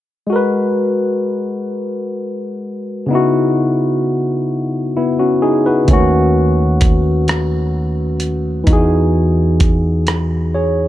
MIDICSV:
0, 0, Header, 1, 4, 480
1, 0, Start_track
1, 0, Key_signature, 5, "minor"
1, 0, Tempo, 930233
1, 157, Time_signature, 6, 3, 24, 8
1, 5615, End_track
2, 0, Start_track
2, 0, Title_t, "Tine electric piano"
2, 0, Program_c, 0, 4
2, 137, Note_on_c, 0, 56, 59
2, 154, Note_on_c, 0, 66, 54
2, 168, Note_on_c, 0, 70, 52
2, 184, Note_on_c, 0, 71, 63
2, 252, Control_c, 0, 64, 127
2, 1567, Note_off_c, 0, 56, 0
2, 1575, Note_off_c, 0, 66, 0
2, 1580, Note_on_c, 0, 49, 64
2, 1582, Note_off_c, 0, 70, 0
2, 1590, Note_off_c, 0, 71, 0
2, 1592, Note_on_c, 0, 59, 56
2, 1603, Control_c, 0, 64, 0
2, 1603, Note_on_c, 0, 63, 56
2, 1614, Note_on_c, 0, 64, 53
2, 1625, Note_on_c, 0, 66, 71
2, 1690, Control_c, 0, 64, 127
2, 2535, Note_off_c, 0, 59, 0
2, 2541, Note_off_c, 0, 63, 0
2, 2547, Note_off_c, 0, 64, 0
2, 2552, Note_off_c, 0, 66, 0
2, 2562, Note_on_c, 0, 64, 50
2, 2565, Note_on_c, 0, 59, 45
2, 2674, Note_off_c, 0, 64, 0
2, 2676, Note_off_c, 0, 59, 0
2, 2679, Note_on_c, 0, 66, 53
2, 2680, Note_on_c, 0, 61, 46
2, 2792, Note_off_c, 0, 66, 0
2, 2793, Note_off_c, 0, 61, 0
2, 2798, Note_on_c, 0, 68, 62
2, 2802, Note_on_c, 0, 63, 48
2, 2911, Note_off_c, 0, 68, 0
2, 2914, Note_off_c, 0, 63, 0
2, 2921, Note_on_c, 0, 71, 55
2, 2926, Note_on_c, 0, 66, 48
2, 3008, Note_off_c, 0, 49, 0
2, 3016, Note_on_c, 0, 49, 48
2, 3031, Note_on_c, 0, 57, 59
2, 3043, Control_c, 0, 64, 0
2, 3047, Note_on_c, 0, 61, 57
2, 3050, Note_on_c, 0, 51, 67
2, 3055, Note_off_c, 0, 66, 0
2, 3060, Note_off_c, 0, 49, 0
2, 3061, Note_on_c, 0, 66, 70
2, 3137, Control_c, 0, 64, 127
2, 3147, Note_off_c, 0, 71, 0
2, 4454, Note_off_c, 0, 57, 0
2, 4457, Note_on_c, 0, 52, 65
2, 4462, Note_off_c, 0, 61, 0
2, 4463, Note_off_c, 0, 51, 0
2, 4469, Note_off_c, 0, 66, 0
2, 4472, Note_on_c, 0, 63, 53
2, 4484, Control_c, 0, 64, 0
2, 4488, Note_on_c, 0, 66, 57
2, 4504, Note_on_c, 0, 68, 72
2, 4575, Control_c, 0, 64, 127
2, 5180, Note_off_c, 0, 63, 0
2, 5188, Note_off_c, 0, 66, 0
2, 5196, Note_off_c, 0, 68, 0
2, 5441, Note_on_c, 0, 73, 49
2, 5445, Note_on_c, 0, 68, 43
2, 5615, Note_off_c, 0, 52, 0
2, 5615, Note_off_c, 0, 68, 0
2, 5615, Note_off_c, 0, 73, 0
2, 5615, End_track
3, 0, Start_track
3, 0, Title_t, "Fretless electric bass"
3, 0, Program_c, 1, 35
3, 3043, Note_on_c, 1, 39, 68
3, 4459, Note_off_c, 1, 39, 0
3, 4480, Note_on_c, 1, 40, 67
3, 5615, Note_off_c, 1, 40, 0
3, 5615, End_track
4, 0, Start_track
4, 0, Title_t, "Drums"
4, 3033, Note_on_c, 9, 42, 47
4, 3036, Note_on_c, 9, 36, 73
4, 3085, Note_off_c, 9, 42, 0
4, 3087, Note_off_c, 9, 36, 0
4, 3513, Note_on_c, 9, 42, 63
4, 3518, Note_on_c, 9, 36, 81
4, 3565, Note_off_c, 9, 42, 0
4, 3569, Note_off_c, 9, 36, 0
4, 3756, Note_on_c, 9, 42, 52
4, 3763, Note_on_c, 9, 37, 86
4, 3808, Note_off_c, 9, 42, 0
4, 3815, Note_off_c, 9, 37, 0
4, 4230, Note_on_c, 9, 42, 58
4, 4282, Note_off_c, 9, 42, 0
4, 4473, Note_on_c, 9, 42, 44
4, 4475, Note_on_c, 9, 36, 82
4, 4524, Note_off_c, 9, 42, 0
4, 4527, Note_off_c, 9, 36, 0
4, 4954, Note_on_c, 9, 42, 64
4, 4957, Note_on_c, 9, 36, 79
4, 5006, Note_off_c, 9, 42, 0
4, 5009, Note_off_c, 9, 36, 0
4, 5195, Note_on_c, 9, 42, 53
4, 5202, Note_on_c, 9, 37, 82
4, 5246, Note_off_c, 9, 42, 0
4, 5254, Note_off_c, 9, 37, 0
4, 5615, End_track
0, 0, End_of_file